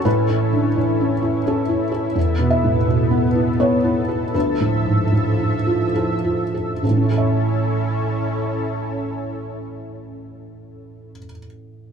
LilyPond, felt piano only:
<<
  \new Staff \with { instrumentName = "Felt piano" } { \time 3/4 \key a \major \tempo 4 = 73 b'2 a'4 | r8 e''4. cis''4 | b'2 a'4 | <a,, a, cis' e' a' e''>2.~ |
<a,, a, cis' e' a' e''>2. | }
  \new Staff \with { instrumentName = "Felt piano" } { \time 3/4 \key a \major \tuplet 3/2 { a,8 e8 d8 e8 cis'8 e'8 cis'8 e'8 a'8 } | \tuplet 3/2 { e,8 b,8 a,8 b,8 b8 e'8 b8 e'8 a'8 } | \tuplet 3/2 { d,8 a,8 gis,8 a,8 e'8 f'8 e'8 f'8 a'8 } | r2. |
r2. | }
>>